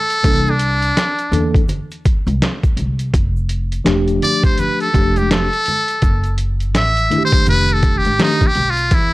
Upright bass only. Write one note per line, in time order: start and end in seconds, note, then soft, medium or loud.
0.24 0.89 C2 loud
1.32 1.64 E2 loud
2.27 2.39 C2 loud
2.77 3.09 C2 medium
3.14 3.78 F1 medium
3.85 4.18 E1 medium
4.94 5.46 F1 medium
6.02 6.74 F#1 loud
6.74 7.07 A1 medium
7.47 7.99 F1 loud
8.05 8.18 A1 medium
8.56 8.88 B1 medium
8.92 9.13 E2 loud